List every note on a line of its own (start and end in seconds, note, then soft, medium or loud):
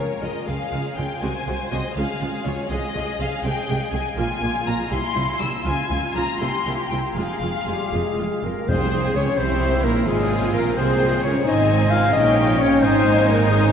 0.00 0.46 A#4 medium
0.00 0.22 C#5 medium
0.22 0.30 C#2 soft
0.22 0.31 C#3 soft
0.22 0.30 G#3 soft
0.22 0.30 F4 soft
0.22 0.48 D#5 medium
0.46 0.56 C#2 soft
0.46 0.56 C#3 soft
0.46 0.54 G#3 soft
0.46 0.54 F4 soft
0.46 1.22 G#4 medium
0.46 0.96 F5 medium
0.72 0.81 C#2 medium
0.72 0.81 C#3 soft
0.72 0.80 G#3 soft
0.72 0.80 F4 soft
0.97 1.06 C#2 soft
0.97 1.05 C#3 soft
0.97 1.05 G#3 soft
0.97 1.05 F4 soft
0.97 1.22 G5 medium
1.22 1.31 C2 medium
1.22 1.30 C3 medium
1.22 1.30 G#3 medium
1.22 1.30 F#4 medium
1.22 1.95 C5 medium
1.22 1.71 G#5 medium
1.47 1.55 C2 soft
1.47 1.55 C3 soft
1.47 1.55 G#3 soft
1.47 1.55 F#4 soft
1.71 1.80 C2 soft
1.71 1.80 C3 soft
1.71 1.79 G#3 soft
1.71 1.79 F#4 soft
1.71 1.96 D#5 medium
1.95 2.04 C#2 medium
1.95 2.04 C#3 medium
1.95 2.05 G#3 soft
1.95 2.05 F4 medium
1.95 2.68 G#4 medium
1.95 2.44 F5 medium
2.21 2.29 C#2 medium
2.21 2.29 C#3 soft
2.21 2.29 G#3 soft
2.21 2.29 F4 soft
2.45 2.54 C#2 soft
2.45 2.54 C#3 soft
2.45 2.53 G#3 soft
2.45 2.53 F4 soft
2.45 2.70 C#5 medium
2.70 2.78 C2 medium
2.70 2.78 C3 medium
2.70 2.79 G#3 medium
2.70 4.15 G#4 medium
2.70 2.78 G#4 medium
2.70 3.19 D#5 medium
2.94 3.03 C2 medium
2.94 3.03 C3 soft
2.94 3.03 G#3 soft
2.94 3.02 G#4 soft
3.19 3.27 C2 soft
3.19 3.27 C3 medium
3.19 3.27 G#3 medium
3.19 3.27 G#4 medium
3.19 3.44 F5 medium
3.44 3.52 C2 medium
3.44 3.52 C3 medium
3.44 3.52 G#3 soft
3.44 3.52 G#4 medium
3.44 3.93 G5 medium
3.68 3.76 C2 medium
3.68 3.77 C3 medium
3.68 3.76 G#3 medium
3.68 3.76 G#4 soft
3.93 4.01 C2 medium
3.93 4.01 C3 medium
3.93 4.01 G#3 soft
3.93 4.01 G#4 medium
3.93 4.17 G#5 medium
4.17 4.25 A#1 medium
4.17 4.26 A#2 medium
4.17 4.25 A#3 medium
4.17 4.25 F4 medium
4.17 4.90 F4 medium
4.17 4.67 G#5 medium
4.41 4.49 A#1 medium
4.41 4.51 A#2 medium
4.41 4.50 A#3 soft
4.41 4.50 F4 soft
4.66 4.74 A#1 medium
4.66 4.76 A#2 medium
4.66 4.74 A#3 medium
4.66 4.74 F4 medium
4.66 4.91 A#5 medium
4.91 4.99 C2 medium
4.91 5.00 C3 medium
4.91 4.99 G3 medium
4.91 5.64 E4 medium
4.91 4.99 E4 medium
4.91 5.40 C6 medium
5.15 5.24 C2 medium
5.15 5.24 C3 medium
5.15 5.23 G3 medium
5.15 5.23 E4 medium
5.40 5.49 C2 medium
5.40 5.50 C3 medium
5.40 5.48 G3 medium
5.40 5.48 E4 medium
5.40 5.65 E6 medium
5.65 5.73 C#2 medium
5.65 5.75 C#3 medium
5.65 5.74 F3 medium
5.65 6.39 F4 medium
5.65 5.73 F4 medium
5.65 6.15 G#5 medium
5.90 5.98 C#2 medium
5.90 6.00 C#3 medium
5.90 5.98 F3 soft
5.90 5.98 F4 soft
6.15 6.23 C#2 medium
6.15 6.24 C#3 medium
6.15 6.23 F3 medium
6.15 6.23 F4 medium
6.15 6.40 A#5 medium
6.40 6.48 C2 medium
6.40 6.49 C3 medium
6.40 6.48 A#3 medium
6.40 6.48 E4 medium
6.40 7.17 G4 medium
6.40 6.90 C6 medium
6.66 6.74 C2 soft
6.66 6.74 C3 soft
6.66 6.75 A#3 soft
6.66 6.75 E4 soft
6.91 6.99 C2 soft
6.91 6.99 C3 medium
6.91 7.00 A#3 soft
6.91 7.00 E4 soft
6.91 6.99 G5 medium
7.16 7.24 F1 medium
7.16 7.26 F2 soft
7.16 7.25 G#3 medium
7.16 7.26 F4 medium
7.16 8.29 G#4 medium
7.16 8.42 F5 medium
7.41 7.49 F1 soft
7.41 7.51 F2 soft
7.41 7.51 G#3 soft
7.41 7.50 F4 soft
7.67 7.75 F1 soft
7.67 7.76 F2 soft
7.67 7.92 G3 medium
7.67 7.75 G#3 soft
7.67 7.75 F4 soft
7.67 7.95 G4 medium
7.67 7.92 G4 medium
7.92 8.00 F1 medium
7.92 8.02 F2 medium
7.92 8.01 G#3 soft
7.92 8.43 G#3 medium
7.92 8.01 F4 soft
7.92 8.46 G#4 medium
7.92 8.45 G#4 medium
8.18 8.26 F1 soft
8.18 8.27 F2 soft
8.18 8.26 G#3 soft
8.18 8.26 F4 soft
8.43 8.52 F1 soft
8.43 8.52 F2 soft
8.43 8.51 G#3 soft
8.43 8.69 A#3 medium
8.43 8.51 F4 soft
8.43 8.69 A#4 medium
8.43 8.70 A#4 medium
8.68 9.12 C2 medium
8.68 9.34 F2 medium
8.68 9.12 C3 medium
8.68 9.12 C4 medium
8.68 9.14 C4 medium
8.68 9.34 G#4 medium
8.68 9.15 C5 medium
8.68 9.12 C5 medium
8.68 9.15 C5 medium
9.15 9.23 C#2 medium
9.15 9.23 C#3 medium
9.15 9.38 C#4 medium
9.15 9.39 C#4 medium
9.15 9.38 C#5 medium
9.15 9.39 C#5 medium
9.37 9.83 C2 medium
9.37 9.84 C3 medium
9.37 9.84 C4 medium
9.37 9.85 C4 medium
9.37 10.06 E4 medium
9.37 9.85 C5 medium
9.37 9.84 C5 medium
9.84 10.07 A#1 medium
9.84 10.07 A#2 medium
9.84 9.95 A#3 medium
9.84 10.08 A#3 medium
9.84 10.08 A#4 medium
9.84 10.07 A#4 medium
10.06 10.54 G#1 medium
10.06 10.54 G#2 medium
10.06 10.53 G#3 medium
10.06 10.77 F4 medium
10.06 10.53 G#4 medium
10.06 10.54 G#4 medium
10.06 10.53 G#4 medium
10.53 10.77 A#1 medium
10.53 10.77 A#2 medium
10.53 10.76 A#3 medium
10.53 10.77 A#3 medium
10.53 10.64 A#4 medium
10.53 10.77 A#4 medium
10.53 10.78 A#4 medium
10.75 11.22 C2 medium
10.75 11.22 C3 medium
10.75 11.21 C4 medium
10.75 11.22 C4 medium
10.75 11.44 G#4 medium
10.75 11.24 C5 medium
10.75 11.22 C5 medium
10.75 11.23 C5 medium
11.22 11.31 C#2 medium
11.22 11.31 C#3 medium
11.22 11.45 C#4 medium
11.22 11.46 C#4 medium
11.22 11.45 C#5 medium
11.22 11.46 C#5 medium
11.45 12.10 G#1 medium
11.45 12.10 G#2 medium
11.45 12.12 C4 medium
11.45 12.09 D#4 medium
11.45 11.90 D#4 medium
11.45 12.09 C5 medium
11.45 11.91 D#5 medium
11.45 11.92 D#5 medium
11.45 12.10 G#5 medium
11.90 12.14 F4 medium
11.90 12.12 F5 loud
11.90 12.13 F5 medium
12.12 12.83 A#1 medium
12.12 12.83 A#2 medium
12.12 12.82 C#4 medium
12.12 12.59 D#4 medium
12.12 12.82 C#5 medium
12.12 12.60 D#5 loud
12.12 12.60 D#5 medium
12.12 12.83 G5 medium
12.59 12.82 C#4 medium
12.59 12.84 C#5 medium
12.59 12.83 C#5 medium
12.82 13.72 G#1 medium
12.82 13.72 G#2 medium
12.82 13.29 C4 medium
12.82 13.72 D#4 loud
12.82 13.50 D#4 medium
12.82 13.49 C5 medium
12.82 13.28 C5 loud
12.82 13.50 G#5 medium
13.28 13.51 A#3 medium
13.28 13.50 A#4 medium
13.28 13.51 A#4 medium
13.51 13.72 G#3 medium
13.51 13.72 D#4 medium
13.51 13.61 G#4 medium
13.51 13.72 G#4 medium
13.51 13.72 C5 medium
13.51 13.72 G#5 medium